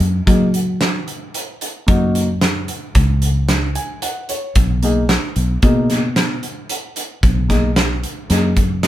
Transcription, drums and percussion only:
0.00 closed hi-hat
0.27 kick, closed hi-hat
0.54 closed hi-hat
0.81 snare, closed hi-hat
1.08 closed hi-hat
1.34 closed hi-hat
1.61 closed hi-hat
1.88 kick, closed hi-hat
2.15 closed hi-hat
2.41 snare, closed hi-hat
2.68 closed hi-hat
2.95 kick, snare, closed hi-hat
3.22 closed hi-hat
3.49 snare, closed hi-hat
3.75 closed hi-hat
4.02 closed hi-hat
4.29 closed hi-hat
4.55 kick, closed hi-hat
4.83 closed hi-hat
5.09 snare, closed hi-hat
5.36 closed hi-hat
5.62 kick, closed hi-hat
5.90 snare, closed hi-hat
6.16 snare, closed hi-hat
6.43 closed hi-hat
6.69 closed hi-hat
6.96 closed hi-hat
7.23 kick, closed hi-hat
7.50 kick, snare, closed hi-hat
7.76 snare, closed hi-hat
8.03 closed hi-hat
8.30 snare, closed hi-hat
8.57 kick, closed hi-hat
8.83 snare, closed hi-hat

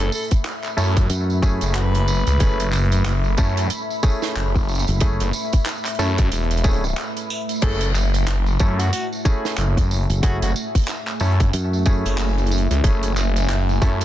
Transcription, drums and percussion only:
0.12 tambourine
0.31 kick, closed hi-hat, tambourine
0.44 clap, snare, closed hi-hat, tambourine
0.64 clap, tambourine
0.78 tambourine
0.96 kick, closed hi-hat, tambourine
1.10 closed hi-hat, tambourine
1.30 tambourine
1.43 kick, tambourine
1.61 closed hi-hat, tambourine
1.75 clap, closed hi-hat, tambourine
1.94 closed hi-hat, tambourine
2.08 tambourine
2.27 closed hi-hat, tambourine
2.40 kick, closed hi-hat, tambourine
2.60 closed hi-hat, tambourine
2.73 clap, tambourine
2.92 closed hi-hat, tambourine
3.05 clap, snare, closed hi-hat, tambourine
3.24 tambourine
3.38 kick, tambourine
3.57 closed hi-hat, tambourine
3.70 closed hi-hat, tambourine
3.90 tambourine
4.03 kick, tambourine
4.22 snare, tambourine
4.36 clap, closed hi-hat, tambourine
4.55 kick, tambourine
4.68 tambourine
4.75 tambourine
4.79 tambourine
4.87 closed hi-hat, tambourine
5.01 kick, closed hi-hat, tambourine
5.20 closed hi-hat, tambourine
5.33 tambourine
5.52 kick, closed hi-hat, tambourine
5.66 clap, snare, closed hi-hat, tambourine
5.85 clap, closed hi-hat, tambourine
5.88 closed hi-hat
5.95 closed hi-hat
5.99 tambourine
6.18 kick, closed hi-hat, tambourine
6.32 closed hi-hat, tambourine
6.51 closed hi-hat, tambourine
6.57 closed hi-hat
6.64 kick, tambourine
6.74 closed hi-hat
6.84 tambourine
6.97 clap, closed hi-hat, tambourine
7.17 closed hi-hat, tambourine
7.30 tambourine
7.49 closed hi-hat, tambourine
7.56 tambourine
7.62 kick, closed hi-hat, tambourine, crash
7.72 tambourine
7.81 closed hi-hat, tambourine
7.95 clap, tambourine
8.14 closed hi-hat, tambourine
8.27 clap, snare, closed hi-hat, tambourine
8.46 tambourine
8.59 kick, tambourine
8.79 closed hi-hat, tambourine
8.93 closed hi-hat, tambourine
9.12 tambourine
9.25 kick, tambourine
9.45 snare, tambourine
9.58 clap, closed hi-hat, tambourine
9.77 kick, closed hi-hat, tambourine
9.91 tambourine
10.10 closed hi-hat, tambourine
10.23 kick, closed hi-hat, tambourine
10.42 closed hi-hat, tambourine
10.56 tambourine
10.75 kick, closed hi-hat, tambourine
10.77 closed hi-hat
10.82 closed hi-hat
10.84 closed hi-hat
10.86 clap, closed hi-hat
10.88 snare, closed hi-hat, tambourine
11.07 clap, tambourine
11.20 tambourine
11.40 kick, closed hi-hat, tambourine
11.53 closed hi-hat, tambourine
11.73 tambourine
11.86 kick, tambourine
12.05 closed hi-hat, tambourine
12.18 clap, closed hi-hat, tambourine
12.38 closed hi-hat, tambourine
12.47 closed hi-hat
12.51 tambourine
12.58 closed hi-hat
12.71 closed hi-hat, tambourine
12.84 kick, closed hi-hat, tambourine
13.03 closed hi-hat, tambourine
13.17 clap, tambourine
13.36 closed hi-hat, tambourine
13.49 clap, snare, closed hi-hat, tambourine
13.69 tambourine
13.82 kick, tambourine
14.01 closed hi-hat, tambourine

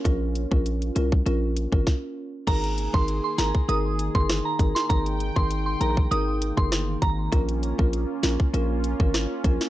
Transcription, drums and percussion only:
0.05 kick, closed hi-hat
0.35 closed hi-hat
0.52 kick
0.66 closed hi-hat
0.82 closed hi-hat
0.96 closed hi-hat
1.12 kick
1.26 closed hi-hat
1.57 closed hi-hat
1.72 kick
1.87 kick, snare
2.47 kick, closed hi-hat, crash
2.64 closed hi-hat
2.78 closed hi-hat
2.94 kick
3.08 closed hi-hat
3.38 snare, closed hi-hat
3.55 kick
3.69 closed hi-hat
3.99 closed hi-hat
4.15 kick
4.29 cross-stick, snare, closed hi-hat
4.59 kick, closed hi-hat
4.76 snare
4.90 kick, closed hi-hat
5.06 closed hi-hat
5.20 closed hi-hat
5.36 kick
5.51 closed hi-hat
5.81 closed hi-hat
5.97 kick
6.12 closed hi-hat
6.42 closed hi-hat
6.57 kick
6.72 cross-stick, snare, closed hi-hat
7.02 kick, closed hi-hat
7.32 kick, closed hi-hat
7.49 closed hi-hat
7.63 closed hi-hat
7.79 kick
7.93 closed hi-hat
8.23 snare, closed hi-hat
8.40 kick
8.54 closed hi-hat
8.84 closed hi-hat
9.00 kick
9.14 cross-stick, snare, closed hi-hat
9.44 kick, closed hi-hat
9.61 snare

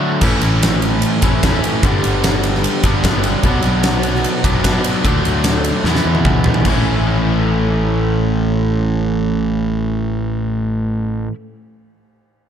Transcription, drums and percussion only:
0.21 kick, crash
0.41 ride
0.63 snare, ride
0.82 ride
1.02 ride
1.22 kick, ride
1.43 kick, snare, ride
1.64 ride
1.83 kick, ride
2.04 ride
2.24 snare, ride
2.43 ride
2.55 snare
2.64 ride
2.83 kick, ride
3.04 kick, snare, ride
3.24 ride
3.43 kick, ride
3.62 ride
3.83 snare, ride
4.03 ride
4.15 snare
4.24 ride
4.44 kick, ride
4.64 kick, snare, ride
4.84 ride
5.05 kick, ride
5.25 ride
5.44 snare, ride
5.64 ride
5.85 snare
5.95 snare
6.15 high tom
6.25 kick, mid tom
6.44 floor tom
6.54 floor tom
6.65 kick, crash

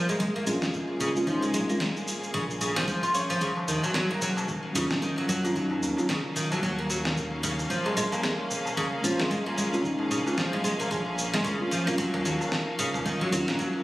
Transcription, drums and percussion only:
0.09 shaker
0.20 kick, shaker
0.47 shaker
0.62 snare, shaker
0.74 kick, shaker
1.00 shaker
1.16 shaker
1.27 kick, shaker
1.43 shaker
1.54 shaker
1.70 shaker
1.80 kick, snare, shaker
1.96 shaker
2.08 shaker
2.23 shaker
2.34 kick, shaker
2.50 shaker
2.61 shaker
2.76 snare, shaker
2.88 kick, shaker
3.03 shaker
3.15 shaker
3.30 shaker
3.41 kick, shaker
3.57 darbuka tek
3.68 shaker
3.84 darbuka tek, shaker
3.94 kick, snare, shaker
4.21 darbuka ka, darbuka dum, shaker
4.37 darbuka tek, shaker
4.48 kick, shaker
4.74 darbuka ka, shaker
4.90 snare, darbuka ka, shaker
5.02 kick, shaker
5.17 darbuka ka, darbuka tek
5.29 shaker
5.44 darbuka ka, darbuka tek, shaker
5.56 kick, shaker
5.71 darbuka tek
5.83 shaker
5.97 darbuka tek, shaker
6.09 kick, snare, shaker
6.36 darbuka ka, darbuka dum, shaker
6.52 darbuka tek, shaker
6.63 kick, shaker
6.78 darbuka ka
6.90 darbuka dum, shaker
7.05 snare, darbuka ka, shaker
7.16 kick, shaker
7.44 shaker
7.59 darbuka ka, shaker
7.70 kick, shaker
7.85 darbuka tek
7.97 shaker
8.12 darbuka tek, shaker
8.23 kick, snare, shaker
8.50 darbuka ka, darbuka dum, shaker
8.65 darbuka tek, shaker
8.77 kick, shaker
9.04 shaker
9.19 snare, darbuka ka, shaker
9.31 kick, shaker
9.46 darbuka ka, darbuka tek
9.58 shaker
9.73 darbuka ka, darbuka tek, shaker
9.84 kick, shaker
9.99 darbuka tek
10.11 shaker
10.27 darbuka tek, shaker
10.38 kick, snare, shaker
10.64 darbuka ka, darbuka dum, shaker
10.80 darbuka tek, shaker
10.91 kick, shaker
11.06 darbuka ka
11.18 darbuka dum, shaker
11.34 snare, darbuka ka, shaker
11.45 kick, shaker
11.71 darbuka ka, darbuka dum, shaker
11.87 darbuka ka, shaker
11.99 kick, shaker
12.14 mid tom, darbuka tek
12.25 shaker
12.41 darbuka tek, shaker
12.52 kick, snare, shaker
12.79 darbuka ka, darbuka dum, shaker
12.94 mid tom, darbuka tek, shaker
13.06 kick, shaker
13.32 darbuka ka, shaker
13.48 snare, darbuka ka, shaker
13.59 kick, shaker
13.74 darbuka ka, darbuka tek

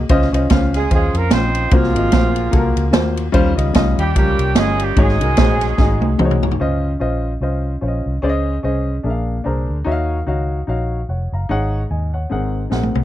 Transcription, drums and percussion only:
0.09 kick, ride bell
0.22 snare
0.34 ride bell
0.50 kick, snare, ride bell
0.74 snare, ride bell
0.91 kick, ride bell
1.14 ride bell
1.31 snare, ride bell
1.55 ride bell
1.71 kick, ride bell
1.84 snare
1.96 ride bell
2.12 kick, snare, ride bell
2.36 ride bell
2.53 kick, ride bell
2.77 ride bell
2.93 snare, ride bell
3.17 ride bell
3.34 kick, ride bell
3.58 ride bell
3.74 kick, snare, ride bell
3.99 ride bell
4.16 kick, ride bell
4.39 ride bell
4.55 snare, ride bell
4.79 ride bell
4.96 kick, ride bell
5.09 snare
5.21 ride bell
5.37 kick, snare, ride bell
5.61 snare, ride bell
5.78 kick, snare
6.02 high tom
6.19 mid tom
6.31 mid tom
6.43 floor tom
6.51 floor tom
12.72 snare
12.83 high tom
12.95 mid tom

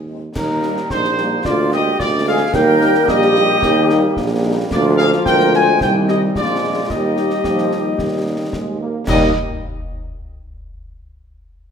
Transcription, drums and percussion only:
0.36 concert bass drum, snare, crash
0.63 snare
0.77 snare
0.90 concert bass drum, snare
1.04 snare
1.18 snare
1.45 concert bass drum, snare
1.72 snare
2.00 concert bass drum, snare
2.54 concert bass drum, snare, crash
2.81 snare
2.95 snare
3.08 concert bass drum, snare
3.22 snare
3.35 snare
3.62 concert bass drum, snare
3.90 snare
4.17 concert bass drum, snare
4.71 concert bass drum, snare, crash
4.99 snare
5.12 snare
5.26 concert bass drum, snare
5.40 snare
5.54 snare
5.81 concert bass drum, snare
6.08 snare
6.35 concert bass drum, snare
6.90 concert bass drum, snare, crash
7.17 snare
7.30 snare
7.44 concert bass drum, snare
7.58 snare
7.71 snare
7.99 concert bass drum, snare
8.53 concert bass drum, snare
9.07 concert bass drum, snare, crash

